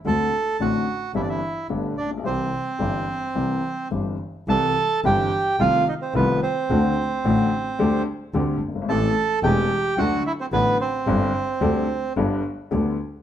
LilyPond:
<<
  \new Staff \with { instrumentName = "Bandoneon" } { \time 4/4 \key c \major \tempo 4 = 109 << { a''4 fis''4 e''32 d''32 e''8. r8 d''8 | c''2. r4 | a''4 g''4 f''8 ees''16 c''16 b'8 c''8~ | c''2~ c''8 r4. |
a''4 g''4 fis''8 e''16 c''16 b'8 c''8~ | c''2 r2 | } \\ { a'4 fis'4 e'16 e'8. r8 d'8 | c'2. r4 | a'4 g'4 f'8 ees'16 c'16 b8 c'8~ | c'2~ c'8 r4. |
a'4 g'4 fis'8 e'16 c'16 b8 c'8~ | c'2 r2 | } >> }
  \new Staff \with { instrumentName = "Grand piano" } { \clef bass \time 4/4 \key c \major <d, d a c' fis'>8 r8 <a,, a, d a c' fis'>8 r8 <g,, g, e g c' g'>8 r8 <g,, g, d a b g'>8 r32 a,,32 bes,,32 b,,32 | <c, c e g c' g'>8 r8 <g,, g, e g c' g'>8 r8 <c, c e g c' g'>8 r8 <g,, g, e g c' g'>8 r8 | <c, c e g c' g'>8 r8 <g,, g, e g c' g'>8 r8 <c, c ees a c' f'>8 r8 <c, c ees a c' f'>8 r8 | <d, d a c' fis'>8 r8 <a,, a, d a c' fis'>8 r8 <d, d g c' g'>8 r8 <d, d g c' g'>8 r32 fis,,32 g,,32 aes,,32 |
<a,, a, e a c' g'>8 r8 <e,, e, e a c' g'>8 r8 <d, d fis a fis'>8 r8 <a,, a, d fis a fis'>8 r8 | <g,, g, d g c' g'>8 r8 <d, d g c' g'>8 r8 <g,, g, d g b g'>8 r8 <d, d g b g'>8 r8 | }
  \new Staff \with { instrumentName = "Double bass" } { \clef bass \time 4/4 \key c \major d,8 r8 a,,8 r8 g,,8 r8 g,,8 bes,,8 | c,8 r8 g,,8 r8 c,8 r8 g,,8 r8 | c,8 r8 g,,8 r8 c,8 r8 c,8 r8 | d,8 r8 a,,8 r8 d,8 r8 d,8 g,,8 |
a,,8 r8 e,,8 r8 d,8 r8 a,,8 r8 | g,,8 r8 d,8 r8 g,,8 r8 d,8 r8 | }
>>